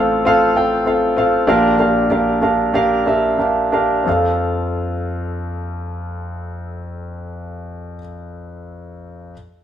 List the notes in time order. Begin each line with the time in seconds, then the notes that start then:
Already playing: A1 A2 C4 F4 A4 F5 G5
0.25 C4 F4 A4 F5
0.56 C4 F4 A4 G5
0.86 C4 F4 A4 F5
1.17 C4 F4 A4 F5
1.47 A#1 A#2 D4 G4 A#4 F5
1.79 D4 G4 A#4 F5
2.10 D4 G4 A#4 F5
2.42 D4 G4 A#4 F5
2.74 D4 G4 A#4 F5
3.06 D4 G4 A#4 E5
3.38 D4 G4 A#4 F5
3.72 D4 G4 A#4 F5
4.04 F2 C4 F4 A4
4.09 F5